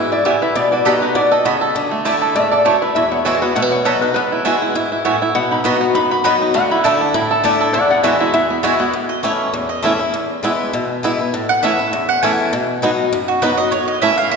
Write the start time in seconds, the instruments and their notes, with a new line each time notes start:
Already playing: steel-string acoustic guitar G#2, five-string banjo E4
0.12 five-string banjo E4, resonator guitar played with a steel bar D5
0.25 steel-string acoustic guitar A2, mandolin B3 F#4 E5 G#5, five-string banjo E4, resonator guitar played with a steel bar G4
0.42 five-string banjo E4, resonator guitar played with a steel bar B4
0.56 steel-string acoustic guitar B2, five-string banjo B3, resonator guitar played with a steel bar D5
0.72 five-string banjo F#4, resonator guitar played with a steel bar D5
0.85 steel-string acoustic guitar F#3 B3 D#4 F#4, mandolin B3 F#4 D#5 B5, resonator guitar played with a steel bar G4, five-string banjo A4
1.02 five-string banjo D#4, resonator guitar played with a steel bar B4
1.15 steel-string acoustic guitar B2, five-string banjo F#4, resonator guitar played with a steel bar D5
1.31 five-string banjo A4, resonator guitar played with a steel bar D#5
1.45 steel-string acoustic guitar C#3, mandolin B3 F#4 D#5 B5, five-string banjo F#4
1.61 five-string banjo A4
1.75 steel-string acoustic guitar D3, five-string banjo D4
1.91 five-string banjo A3
2.05 steel-string acoustic guitar D3 A3 D4 E4, mandolin A3 E4 D5 A5, five-string banjo E4
2.21 five-string banjo A4
2.35 steel-string acoustic guitar G#2, five-string banjo A3, resonator guitar played with a steel bar E5
2.52 five-string banjo A4, resonator guitar played with a steel bar D5
2.65 steel-string acoustic guitar F#2, mandolin A3 E4 D5 A5, five-string banjo E4, resonator guitar played with a steel bar C#5
2.82 five-string banjo A3, resonator guitar played with a steel bar B4
2.95 steel-string acoustic guitar E2, five-string banjo E4, resonator guitar played with a steel bar E5
3.11 five-string banjo B3, resonator guitar played with a steel bar C#5
3.25 steel-string acoustic guitar E3 G#3 B3 F#4, mandolin B3 F#4 E5 G#5, five-string banjo E4, resonator guitar played with a steel bar C#5
3.42 five-string banjo B3, steel-string acoustic guitar B3 F#4, resonator guitar played with a steel bar B4
3.55 steel-string acoustic guitar B2, five-string banjo A3, resonator guitar played with a steel bar F#5
3.62 five-string banjo B3
3.72 resonator guitar played with a steel bar C#5
3.85 steel-string acoustic guitar F#3 B3 D#4 F#4, mandolin B3 F#4 D#5 B5, five-string banjo A4, resonator guitar played with a steel bar C#5
4.01 five-string banjo D#4, steel-string acoustic guitar D#4 F#4, resonator guitar played with a steel bar B4
4.14 steel-string acoustic guitar E2, five-string banjo B3, resonator guitar played with a steel bar B4
4.32 five-string banjo E4
4.45 steel-string acoustic guitar E3 G#3 B3 F#4, mandolin B3 F#4 E5 G#5, five-string banjo E4
4.62 five-string banjo E4
4.75 steel-string acoustic guitar G#2, five-string banjo E4
4.92 five-string banjo E4
5.05 steel-string acoustic guitar A2, mandolin B3 F#4 E5 G#5, five-string banjo E4
5.22 five-string banjo E4
5.35 steel-string acoustic guitar B2, five-string banjo B3, resonator guitar played with a steel bar F#5
5.51 five-string banjo D#4, resonator guitar played with a steel bar B5
5.64 steel-string acoustic guitar F#3 B3 D#4 F#4, mandolin B3 F#4 D#5 B5, five-string banjo F#4
5.81 five-string banjo B3
5.95 steel-string acoustic guitar F#2, five-string banjo D#4, resonator guitar played with a steel bar B5
6.11 five-string banjo F#4, resonator guitar played with a steel bar B5
6.24 steel-string acoustic guitar F#3 B3 D#4 F#4, mandolin B3 F#4 D#5 B5, five-string banjo B3
6.41 five-string banjo D#4
6.54 steel-string acoustic guitar D3, five-string banjo A3, resonator guitar played with a steel bar F#5
6.71 five-string banjo E4, resonator guitar played with a steel bar B5
6.84 steel-string acoustic guitar D3 A3 D4 E4, mandolin A3 E4 D5 A5, five-string banjo A4
7.01 five-string banjo D4
7.14 steel-string acoustic guitar A2, five-string banjo E4, resonator guitar played with a steel bar B5
7.31 five-string banjo A4, resonator guitar played with a steel bar A5
7.44 steel-string acoustic guitar D3 A3 D4 E4, mandolin A3 E4 D5 A5, five-string banjo E4
7.61 five-string banjo A4
7.73 steel-string acoustic guitar E2, five-string banjo E4, resonator guitar played with a steel bar D5 F#5
7.90 five-string banjo B3, resonator guitar played with a steel bar D5 F#5
8.03 steel-string acoustic guitar E3 G#3 B3 F#4, mandolin B3 F#4 E5 G#5, five-string banjo E4, resonator guitar played with a steel bar E5 G#5
8.20 five-string banjo E4, resonator guitar played with a steel bar E5 G#5
8.34 steel-string acoustic guitar E2, five-string banjo E4, resonator guitar played with a steel bar E5
8.50 five-string banjo B3
8.63 steel-string acoustic guitar E3 G#3 B3 F#4, mandolin B3 F#4 E5 G#5, five-string banjo E4
8.79 five-string banjo B3, steel-string acoustic guitar B3 F#4
8.93 steel-string acoustic guitar A2
9.09 mandolin D#5
9.23 steel-string acoustic guitar E3 A3 C#4 E4, five-string banjo A3 C#4 E4, mandolin C#5
9.54 steel-string acoustic guitar E2
9.69 mandolin D#5
9.83 steel-string acoustic guitar E3 A3 C#4 E4, five-string banjo A3 C#4 E4, mandolin E5
9.99 steel-string acoustic guitar C#4 E4
10.14 steel-string acoustic guitar E2
10.43 steel-string acoustic guitar E3 G#3 B3 E4, five-string banjo B3 E4
10.73 steel-string acoustic guitar B2
11.03 steel-string acoustic guitar E3 G#3 B3 E4, five-string banjo B3 E4
11.19 steel-string acoustic guitar B3 E4
11.34 steel-string acoustic guitar A2
11.49 mandolin F#5
11.63 steel-string acoustic guitar E3 A3 C#4 E4, five-string banjo A3 C#4 E4, mandolin E5
11.79 steel-string acoustic guitar C#4 E4
11.93 steel-string acoustic guitar E2
12.09 mandolin F#5
12.23 steel-string acoustic guitar E3 A3 C#4 E4, five-string banjo A3 C#4 E4, mandolin G#5
12.53 steel-string acoustic guitar B2
12.82 steel-string acoustic guitar F#3 B3 D#4 F#4, five-string banjo B3 D#4 F#4
13.13 steel-string acoustic guitar F#2
13.28 mandolin F#4
13.42 steel-string acoustic guitar F#3 B3 D#4 F#4, five-string banjo B3 D#4 F#4, mandolin B4
13.58 steel-string acoustic guitar D#4 F#4, mandolin D#5
13.71 steel-string acoustic guitar A2, mandolin C#5
13.88 mandolin D#5
14.02 steel-string acoustic guitar E3 A3 C#4 E4, five-string banjo A3 C#4 E4, mandolin E5
14.18 mandolin F5
14.31 steel-string acoustic guitar E2, mandolin E5